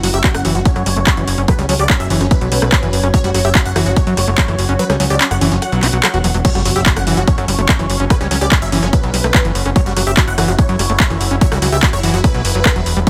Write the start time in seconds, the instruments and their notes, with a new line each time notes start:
Already playing: synth texture F#3 C#4, ambient pad C#4 F#4 F#5
0.03 analog synth bass F#1, acid bass F#3, supersaw synth F#4, open hi-hat
0.14 analog synth bass F#1, acid bass G4, supersaw synth E5, closed hi-hat
0.24 supersaw synth F#4, kick, clap, closed hi-hat
0.34 analog synth bass F#1, supersaw synth F#5, cross-stick, closed hi-hat
0.45 analog synth bass F#1, acid bass E3, supersaw synth F#4, open hi-hat
0.55 analog synth bass F#1, acid bass F#3, supersaw synth F#4, closed hi-hat
0.64 ambient pad C#5, supersaw synth C#5, kick, closed hi-hat
0.76 analog synth bass F#2, acid bass F#3, cross-stick, closed hi-hat
0.86 analog synth bass F#1, acid bass G3, open hi-hat
0.97 analog synth bass F#1, acid bass A3, closed hi-hat
1.07 acid bass G3, kick, cross-stick, clap, closed hi-hat
1.17 analog synth bass F#1, acid bass E3, closed hi-hat
1.28 analog synth bass F#1, open hi-hat
1.38 analog synth bass F#1, acid bass C#4, closed hi-hat
1.48 acid bass F#3, supersaw synth B4, kick, cross-stick, closed hi-hat
1.59 analog synth bass C#2, acid bass G3, supersaw synth C#4, closed hi-hat
1.69 analog synth bass C#2, acid bass F#3, supersaw synth C#4, open hi-hat
1.79 analog synth bass C#2, acid bass G4, supersaw synth D5, closed hi-hat
1.90 supersaw synth C#4, kick, cross-stick, clap, closed hi-hat
2.00 analog synth bass F#1, supersaw synth E5, closed hi-hat
2.10 analog synth bass F#1, acid bass E3, supersaw synth C#4, open hi-hat
2.21 analog synth bass F#1, acid bass F#3, supersaw synth C#4, cross-stick, closed hi-hat
2.31 supersaw synth B4, kick, closed hi-hat
2.41 analog synth bass B1, acid bass F#3, closed hi-hat
2.52 analog synth bass B1, acid bass G3, open hi-hat
2.62 analog synth bass B1, acid bass A3, cross-stick
2.72 acid bass G3, kick, clap, closed hi-hat
2.83 analog synth bass F#1, acid bass E3, closed hi-hat
2.93 analog synth bass F#1, open hi-hat
3.03 analog synth bass F#1, acid bass C#4, cross-stick, closed hi-hat
3.14 acid bass F#3, synth texture F#4, supersaw synth C#5, kick, closed hi-hat
3.24 analog synth bass F#1, acid bass G3, supersaw synth F#4, closed hi-hat
3.34 analog synth bass F#1, acid bass F#3, supersaw synth F#4, cross-stick, open hi-hat
3.45 analog synth bass F#1, acid bass G4, supersaw synth E5, closed hi-hat
3.55 supersaw synth F#4, kick, clap, closed hi-hat
3.65 analog synth bass F#1, supersaw synth F#5, closed hi-hat
3.76 analog synth bass F#1, acid bass E3, supersaw synth F#4, cross-stick, open hi-hat
3.86 analog synth bass F#1, acid bass F#3, supersaw synth F#4, closed hi-hat
3.96 supersaw synth C#5, kick, closed hi-hat
4.07 analog synth bass F#2, acid bass F#3, closed hi-hat
4.17 analog synth bass F#1, acid bass G3, cross-stick, open hi-hat
4.28 analog synth bass F#1, acid bass A3, closed hi-hat
4.38 acid bass G3, kick, clap, closed hi-hat
4.48 analog synth bass F#1, acid bass E3, cross-stick, closed hi-hat
4.59 analog synth bass F#1, open hi-hat
4.69 analog synth bass F#1, acid bass C#4, closed hi-hat
4.79 acid bass F#3, supersaw synth B4, closed hi-hat
4.90 analog synth bass C#2, acid bass G3, supersaw synth C#4, cross-stick, closed hi-hat
5.00 analog synth bass C#2, acid bass F#3, supersaw synth C#4, open hi-hat
5.10 analog synth bass C#2, acid bass G4, supersaw synth D5, closed hi-hat
5.21 supersaw synth C#4, clap, closed hi-hat
5.31 analog synth bass F#1, supersaw synth F#5, cross-stick, closed hi-hat
5.41 analog synth bass F#1, acid bass E3, supersaw synth C#4, open hi-hat
5.52 analog synth bass F#1, acid bass F#3, supersaw synth C#4, closed hi-hat
5.62 supersaw synth F#5, cross-stick, closed hi-hat
5.72 analog synth bass B1, acid bass F#3, closed hi-hat
5.83 analog synth bass B1, acid bass F#4, clap, open hi-hat
5.93 analog synth bass B1, acid bass F#3, closed hi-hat
6.03 acid bass F#3, cross-stick, clap, closed hi-hat
6.14 analog synth bass E1, acid bass F#4, closed hi-hat
6.24 analog synth bass E1, acid bass F#3, open hi-hat
6.34 analog synth bass E1, acid bass F#3, closed hi-hat
6.45 synth texture F#3 C#4, acid bass F#3, supersaw synth C#5, kick, closed hi-hat, crash, impact
6.55 analog synth bass F#1, acid bass G3, supersaw synth F#4, cross-stick, closed hi-hat
6.65 analog synth bass F#1, acid bass F#3, supersaw synth F#4, open hi-hat
6.76 analog synth bass F#1, acid bass G4, supersaw synth E5, closed hi-hat
6.86 supersaw synth F#4, kick, clap, closed hi-hat
6.96 analog synth bass F#1, supersaw synth F#5, cross-stick, closed hi-hat
7.07 analog synth bass F#1, acid bass E3, supersaw synth F#4, open hi-hat
7.17 analog synth bass F#1, acid bass F#3, supersaw synth F#4, closed hi-hat
7.28 supersaw synth C#5, kick, closed hi-hat
7.38 analog synth bass F#2, acid bass F#3, cross-stick, closed hi-hat
7.48 analog synth bass F#1, acid bass G3, open hi-hat
7.59 analog synth bass F#1, acid bass A3, closed hi-hat
7.69 acid bass G3, kick, cross-stick, clap, closed hi-hat
7.79 analog synth bass F#1, acid bass E3, closed hi-hat
7.90 analog synth bass F#1, open hi-hat
8.00 analog synth bass F#1, acid bass C#4, closed hi-hat
8.10 acid bass F#3, supersaw synth B4, kick, cross-stick, closed hi-hat
8.21 analog synth bass C#2, acid bass G3, supersaw synth C#4, closed hi-hat
8.31 analog synth bass C#2, acid bass F#3, supersaw synth C#4, open hi-hat
8.41 analog synth bass C#2, acid bass G4, supersaw synth D5, closed hi-hat
8.52 supersaw synth C#4, kick, cross-stick, clap, closed hi-hat
8.62 analog synth bass F#1, supersaw synth E5, closed hi-hat
8.72 analog synth bass F#1, acid bass E3, supersaw synth C#4, open hi-hat
8.83 analog synth bass F#1, acid bass F#3, supersaw synth C#4, cross-stick, closed hi-hat
8.93 supersaw synth B4, kick, closed hi-hat
9.03 analog synth bass B1, acid bass F#3, closed hi-hat
9.14 analog synth bass B1, acid bass G3, open hi-hat
9.24 analog synth bass B1, acid bass A3, cross-stick, closed hi-hat
9.34 acid bass G3, kick, clap, closed hi-hat
9.45 analog synth bass F#1, acid bass E3, closed hi-hat
9.55 analog synth bass F#1, open hi-hat
9.65 analog synth bass F#1, acid bass C#4, cross-stick, closed hi-hat
9.76 acid bass F#3, synth texture E4, supersaw synth C#5, kick, closed hi-hat
9.86 analog synth bass F#1, acid bass G3, supersaw synth F#4, closed hi-hat
9.96 analog synth bass F#1, acid bass F#3, supersaw synth F#4, cross-stick, open hi-hat
10.07 analog synth bass F#1, acid bass G4, supersaw synth E5, closed hi-hat
10.17 supersaw synth F#4, kick, clap, closed hi-hat
10.28 analog synth bass F#1, supersaw synth F#5, closed hi-hat
10.38 analog synth bass F#1, acid bass E3, supersaw synth F#4, cross-stick, open hi-hat
10.48 analog synth bass F#1, acid bass F#3, supersaw synth F#4, closed hi-hat
10.59 supersaw synth C#5, kick, closed hi-hat
10.69 analog synth bass F#2, acid bass F#3, closed hi-hat
10.79 analog synth bass F#1, acid bass G3, cross-stick, open hi-hat
10.90 analog synth bass F#1, acid bass A3, closed hi-hat
11.00 acid bass G3, kick, clap, closed hi-hat
11.10 analog synth bass F#1, acid bass E3, cross-stick, closed hi-hat
11.21 analog synth bass F#1, open hi-hat
11.31 analog synth bass F#1, acid bass C#4, closed hi-hat
11.41 acid bass F#3, supersaw synth C#5, kick, closed hi-hat
11.52 analog synth bass C#2, acid bass G3, supersaw synth F#4, cross-stick, closed hi-hat
11.62 analog synth bass C#2, acid bass F#3, supersaw synth F#4, open hi-hat
11.72 analog synth bass C#2, acid bass G4, supersaw synth E5, closed hi-hat
11.83 supersaw synth F#4, kick, clap, closed hi-hat
11.93 analog synth bass F#1, supersaw synth C#5, cross-stick, closed hi-hat
12.03 analog synth bass F#1, acid bass E3, supersaw synth F#4, open hi-hat
12.14 analog synth bass F#1, acid bass F#3, supersaw synth F#4, closed hi-hat
12.24 supersaw synth B4, kick, cross-stick, closed hi-hat
12.34 analog synth bass B1, acid bass F#3, closed hi-hat
12.45 analog synth bass F#1, open hi-hat
12.55 analog synth bass F#1, acid bass F#3, closed hi-hat
12.65 acid bass G3, kick, cross-stick, clap, closed hi-hat
12.76 analog synth bass E1, acid bass F#3, closed hi-hat
12.86 analog synth bass E1, open hi-hat
12.97 analog synth bass E1, acid bass G3, closed hi-hat